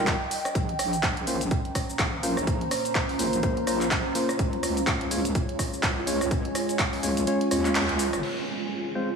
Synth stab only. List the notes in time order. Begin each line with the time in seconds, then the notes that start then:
Already playing: G3 D#4 F4 A#4
1.27 A#3 C#4 F4 C5
2.23 A#3 C#4 F4 C5
3.19 A#3 C#4 F4 C5
3.43 A#3 C#4 F4 C5
3.67 A#3 C#4 F4 C5
4.15 A#3 C#4 F4 C5
5.11 G#3 C#4 F4 C#5
6.07 G#3 C#4 F4 C#5
7.03 G#3 C#4 F4 C#5
7.27 G#3 C#4 F4 C#5
7.51 G#3 C#4 F4 C#5
7.65 G#3 C#4 F4 C#5
8.95 G#3 C4 F4 C5